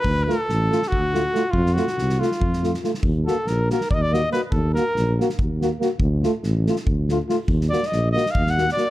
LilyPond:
<<
  \new Staff \with { instrumentName = "Cornet" } { \time 7/8 \tempo 4 = 141 ces''8 a'4. ges'4. | f'8 ges'4 f'4. r8 | r8 a'8 bes'8 bes'8 d''32 ees''32 d''16 ees''8 ces''8 | a'8 bes'4 r2 |
r2. r8 | r8 d''8 ees''8 ees''8 f''8 ges''8 d''8 | }
  \new Staff \with { instrumentName = "Trombone" } { \time 7/8 r8 f'8 r8 f'8 r8 f'8 f'8 | r8 f'8 r8 f'8 r8 f'8 f'8 | r8 ges'8 r8 ges'8 r8 ges'8 ges'8 | r8 ges'8 r8 ges'8 r8 ges'8 ges'8 |
r8 f'8 r8 f'8 r8 f'8 f'8 | r8 ges'8 r8 ges'8 r8 ges'8 ges'8 | }
  \new Staff \with { instrumentName = "Euphonium" } { \time 7/8 r8 a8 r8 a8 r8 a8 a8 | r8 a8 r8 a8 r8 a8 a8 | r8 bes8 r8 bes8 r8 bes8 bes8 | r8 bes8 r8 bes8 r8 bes8 bes8 |
r8 a8 r8 a8 r8 a8 a8 | r8 bes8 r8 bes8 r8 bes8 bes8 | }
  \new Staff \with { instrumentName = "Tuba" } { \clef bass \time 7/8 d,4 a,,4 d,4. | f,4 c,4 f,4. | ees,4 bes,,4 ees,4. | ees,4 bes,,4 ees,4. |
d,4 a,,4 d,4. | ees,4 bes,,4 ees,4. | }
  \new DrumStaff \with { instrumentName = "Drums" } \drummode { \time 7/8 bd8 sn8 sn8 sn16 sn16 bd8 sn8 sn8 | bd16 sn16 sn16 sn16 sn16 sn16 sn16 sn16 bd16 sn16 sn16 sn16 sn16 sn16 | bd8 sn8 sn8 sn16 sn16 bd8 sn8 sn8 | bd8 sn8 sn8 sn16 sn16 bd8 sn8 sn8 |
bd8 sn8 sn8 sn16 sn16 bd8 sn8 sn8 | bd16 sn16 sn16 sn16 sn8 sn16 sn16 bd16 sn16 sn16 sn16 sn8 | }
>>